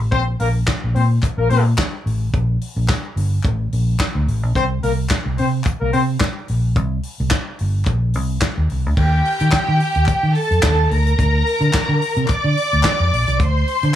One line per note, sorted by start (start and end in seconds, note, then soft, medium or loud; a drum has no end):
0.00 0.12 A1 medium
0.12 0.34 A#1 loud
0.12 0.21 C4 loud
0.12 0.21 C5 loud
0.12 kick loud
0.12 closed hi-hat medium
0.40 0.62 A#1 loud
0.40 0.49 A#3 medium
0.40 0.48 A#4 medium
0.40 open hi-hat medium
0.67 kick loud
0.67 snare loud
0.67 clap medium
0.67 closed hi-hat medium
0.84 0.93 A#1 medium
0.95 1.18 A#2 medium
0.95 1.04 C4 medium
0.95 1.04 C5 medium
0.95 open hi-hat soft
1.23 kick loud
1.23 clap medium
1.23 closed hi-hat medium
1.38 1.48 A#1 medium
1.38 1.48 A#3 medium
1.38 1.48 A#4 medium
1.50 1.72 A#2 loud
1.50 1.62 C4 medium
1.50 1.62 C5 medium
1.50 open hi-hat medium
1.77 kick loud
1.77 snare loud
1.77 clap medium
1.77 closed hi-hat medium
2.06 2.28 A1 medium
2.06 open hi-hat medium
2.33 2.56 A#1 loud
2.33 kick medium
2.33 closed hi-hat medium
2.61 open hi-hat medium
2.76 2.86 A#1 loud
2.88 kick loud
2.88 snare medium
2.88 clap medium
2.88 closed hi-hat medium
3.16 3.38 G1 medium
3.16 open hi-hat medium
3.43 3.67 A1 medium
3.43 kick loud
3.43 clap medium
3.43 closed hi-hat medium
3.72 3.95 A#1 medium
3.72 open hi-hat medium
3.99 kick loud
3.99 snare medium
3.99 clap loud
3.99 clap medium
3.99 closed hi-hat medium
4.15 4.25 D2 medium
4.28 4.43 A1 medium
4.28 open hi-hat medium
4.43 4.53 A#1 medium
4.55 4.78 C2 loud
4.55 4.63 C4 loud
4.55 4.63 C5 loud
4.55 kick medium
4.55 closed hi-hat medium
4.83 5.05 C2 loud
4.83 4.92 A#3 medium
4.83 4.91 A#4 medium
4.83 open hi-hat medium
5.09 kick loud
5.09 snare loud
5.09 clap medium
5.09 closed hi-hat medium
5.26 5.36 C2 medium
5.38 5.61 C3 medium
5.38 5.46 C4 medium
5.38 5.47 C5 medium
5.38 open hi-hat medium
5.64 kick loud
5.64 clap medium
5.64 closed hi-hat medium
5.81 5.91 C2 medium
5.81 5.91 A#3 medium
5.81 5.91 A#4 medium
5.93 6.16 C3 loud
5.93 6.02 C4 medium
5.93 6.02 C5 medium
5.93 open hi-hat medium
6.19 kick loud
6.19 snare loud
6.19 clap medium
6.19 clap loud
6.19 closed hi-hat medium
6.48 6.76 A#1 medium
6.48 open hi-hat medium
6.76 6.98 C2 loud
6.76 kick loud
6.76 closed hi-hat medium
7.03 open hi-hat medium
7.20 7.30 C2 loud
7.30 kick medium
7.30 snare medium
7.30 clap medium
7.30 closed hi-hat medium
7.59 7.82 G1 medium
7.59 open hi-hat medium
7.85 8.15 A#1 medium
7.85 kick loud
7.85 clap medium
7.85 closed hi-hat medium
8.13 8.37 C2 loud
8.13 open hi-hat medium
8.40 kick loud
8.40 snare loud
8.40 clap medium
8.40 closed hi-hat medium
8.58 8.68 D#2 medium
8.69 8.86 C2 medium
8.69 open hi-hat medium
8.86 8.96 D2 medium
8.97 9.20 D#2 loud
8.97 10.33 G4 medium
8.97 10.33 G5 medium
8.97 kick medium
8.97 crash medium
9.25 open hi-hat medium
9.40 9.51 D#3 loud
9.40 closed hi-hat soft
9.52 kick loud
9.52 snare loud
9.52 clap medium
9.52 closed hi-hat medium
9.68 9.78 D#3 medium
9.80 open hi-hat medium
9.95 10.06 D#2 medium
9.95 closed hi-hat soft
10.06 muted fingered electric bass stroke soft
10.06 kick loud
10.06 clap medium
10.06 closed hi-hat medium
10.23 10.33 D#3 medium
10.35 10.89 A4 medium
10.35 10.90 A5 medium
10.35 open hi-hat medium
10.51 10.61 F2 medium
10.51 closed hi-hat soft
10.62 10.86 D#2 medium
10.62 kick loud
10.62 snare loud
10.62 clap medium
10.62 clap loud
10.62 closed hi-hat medium
10.91 11.13 D2 medium
10.91 12.26 A#4 medium
10.91 12.26 A#5 medium
10.91 open hi-hat medium
11.07 closed hi-hat soft
11.19 11.41 D2 medium
11.19 kick medium
11.19 closed hi-hat medium
11.46 open hi-hat medium
11.61 11.71 D3 loud
11.61 closed hi-hat soft
11.73 muted fingered electric bass stroke soft
11.73 kick loud
11.73 snare loud
11.73 clap medium
11.73 closed hi-hat medium
11.89 11.99 D3 medium
12.02 open hi-hat medium
12.16 12.27 C3 loud
12.16 closed hi-hat soft
12.28 13.37 D5 medium
12.28 13.37 D6 medium
12.28 muted fingered electric bass stroke soft
12.28 kick loud
12.28 clap medium
12.28 closed hi-hat medium
12.44 12.55 D3 medium
12.57 open hi-hat medium
12.72 12.83 D2 medium
12.72 closed hi-hat soft
12.83 kick loud
12.83 snare loud
12.83 clap loud
12.83 clap medium
12.83 closed hi-hat medium
13.00 13.10 F2 medium
13.13 13.24 A#1 medium
13.13 open hi-hat medium
13.28 13.38 C2 medium
13.28 closed hi-hat soft
13.39 13.62 D2 loud
13.39 13.95 C5 medium
13.39 13.95 C6 medium
13.39 kick loud
13.39 closed hi-hat medium
13.67 open hi-hat medium
13.83 13.93 D3 loud
13.83 closed hi-hat soft